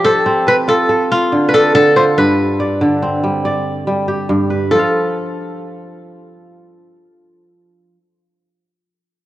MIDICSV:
0, 0, Header, 1, 3, 480
1, 0, Start_track
1, 0, Tempo, 424929
1, 2450, Time_signature, 12, 3, 24, 8
1, 10454, End_track
2, 0, Start_track
2, 0, Title_t, "Kora"
2, 0, Program_c, 0, 46
2, 0, Note_on_c, 0, 67, 87
2, 52, Note_on_c, 0, 69, 101
2, 543, Note_on_c, 0, 71, 92
2, 611, Note_off_c, 0, 71, 0
2, 771, Note_off_c, 0, 69, 0
2, 776, Note_on_c, 0, 69, 95
2, 1261, Note_on_c, 0, 65, 84
2, 1412, Note_off_c, 0, 67, 0
2, 1679, Note_on_c, 0, 71, 69
2, 1734, Note_off_c, 0, 69, 0
2, 1739, Note_on_c, 0, 69, 106
2, 1970, Note_off_c, 0, 69, 0
2, 1975, Note_on_c, 0, 69, 96
2, 2217, Note_on_c, 0, 72, 84
2, 2285, Note_off_c, 0, 71, 0
2, 2285, Note_off_c, 0, 72, 0
2, 2462, Note_on_c, 0, 71, 77
2, 2971, Note_off_c, 0, 65, 0
2, 3463, Note_off_c, 0, 69, 0
2, 4809, Note_off_c, 0, 71, 0
2, 5322, Note_on_c, 0, 69, 76
2, 8948, Note_off_c, 0, 69, 0
2, 10454, End_track
3, 0, Start_track
3, 0, Title_t, "Kora"
3, 0, Program_c, 1, 46
3, 0, Note_on_c, 1, 53, 66
3, 0, Note_on_c, 1, 62, 66
3, 0, Note_on_c, 1, 65, 67
3, 0, Note_on_c, 1, 67, 62
3, 60, Note_on_c, 1, 72, 75
3, 294, Note_on_c, 1, 60, 86
3, 529, Note_on_c, 1, 71, 72
3, 699, Note_off_c, 1, 67, 0
3, 761, Note_off_c, 1, 65, 0
3, 765, Note_on_c, 1, 65, 72
3, 1006, Note_on_c, 1, 69, 80
3, 1068, Note_off_c, 1, 53, 0
3, 1358, Note_off_c, 1, 62, 0
3, 1402, Note_off_c, 1, 72, 0
3, 1492, Note_on_c, 1, 50, 68
3, 1733, Note_on_c, 1, 62, 68
3, 1918, Note_off_c, 1, 71, 0
3, 1958, Note_off_c, 1, 50, 0
3, 1972, Note_on_c, 1, 50, 77
3, 2215, Note_off_c, 1, 65, 0
3, 2219, Note_on_c, 1, 65, 59
3, 2327, Note_off_c, 1, 60, 0
3, 2458, Note_on_c, 1, 43, 74
3, 2495, Note_off_c, 1, 69, 0
3, 2506, Note_off_c, 1, 50, 0
3, 2934, Note_on_c, 1, 74, 73
3, 3175, Note_on_c, 1, 50, 85
3, 3415, Note_on_c, 1, 60, 69
3, 3630, Note_off_c, 1, 62, 0
3, 3654, Note_on_c, 1, 55, 69
3, 3892, Note_off_c, 1, 74, 0
3, 3896, Note_on_c, 1, 74, 81
3, 3929, Note_off_c, 1, 65, 0
3, 4360, Note_off_c, 1, 55, 0
3, 4373, Note_on_c, 1, 55, 72
3, 4610, Note_on_c, 1, 67, 68
3, 4836, Note_off_c, 1, 43, 0
3, 4850, Note_on_c, 1, 43, 75
3, 5087, Note_on_c, 1, 71, 56
3, 5148, Note_off_c, 1, 74, 0
3, 5155, Note_off_c, 1, 60, 0
3, 5322, Note_on_c, 1, 53, 61
3, 5369, Note_on_c, 1, 65, 62
3, 5385, Note_off_c, 1, 43, 0
3, 5385, Note_off_c, 1, 50, 0
3, 5385, Note_off_c, 1, 55, 0
3, 5412, Note_on_c, 1, 77, 64
3, 6206, Note_off_c, 1, 67, 0
3, 6476, Note_off_c, 1, 71, 0
3, 8994, Note_off_c, 1, 53, 0
3, 9040, Note_off_c, 1, 65, 0
3, 9084, Note_off_c, 1, 77, 0
3, 10454, End_track
0, 0, End_of_file